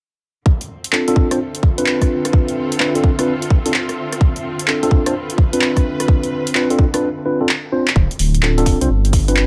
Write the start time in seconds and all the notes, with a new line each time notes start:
0.46 D3 C4 F4 A4 E5, kick
0.56 C4
0.61 closed hi-hat
0.84 closed hi-hat
0.93 C4 D4 F4 A4, clap
1.08 C4 D4 F4 A4, closed hi-hat
1.14 F4 A4, kick
1.31 C4 D4 F4 C5, cross-stick, closed hi-hat
1.55 closed hi-hat
1.63 kick
1.78 C4 D4 F4 B4, closed hi-hat
1.86 clap
2.02 kick, cross-stick, closed hi-hat
2.25 cross-stick, closed hi-hat
2.33 kick
2.48 closed hi-hat
2.72 closed hi-hat
2.80 C4 D4 F4 B4, clap
2.95 C4 D4 F4 A4, closed hi-hat
3.04 kick
3.19 C4 D4 F4 B4, cross-stick, closed hi-hat
3.42 closed hi-hat
3.50 kick
3.66 C4 D4 F4 A4, closed hi-hat
3.74 clap
3.89 cross-stick, closed hi-hat
4.13 cross-stick, closed hi-hat
4.21 B4, kick
4.36 closed hi-hat
4.59 closed hi-hat
4.68 C4 D4 F4 A4, clap
4.83 C4 D4 F4 A4, closed hi-hat
4.91 kick
5.06 C4 D4 F4 C5, cross-stick, closed hi-hat
5.12 B4
5.30 closed hi-hat
5.38 kick
5.53 C4 D4 F4 B4, closed hi-hat
5.61 clap
5.77 kick, cross-stick, closed hi-hat
6.00 cross-stick, closed hi-hat
6.08 kick
6.23 closed hi-hat
6.47 closed hi-hat
6.55 C4 D4 F4 B4, clap
6.70 C4 D4 F4 A4, closed hi-hat
6.79 kick
6.94 C4 D4 F4 B4, cross-stick, closed hi-hat
7.26 C4 D4 F4 B4
7.41 C4 D4 F4 A4
7.49 clap
7.72 C4 D4 F4 C5
7.88 clap
7.96 D1, kick
8.11 closed hi-hat
8.19 D1, open hi-hat
8.35 closed hi-hat
8.43 C4 D4 F4 A4, clap
8.58 C4 D4 F4 A4, closed hi-hat
8.66 kick, open hi-hat
8.81 C2 C4 D4 F4 C5, closed hi-hat
8.90 G1
9.05 closed hi-hat
9.13 kick, open hi-hat
9.28 C4 D4 F4 B4, closed hi-hat
9.37 clap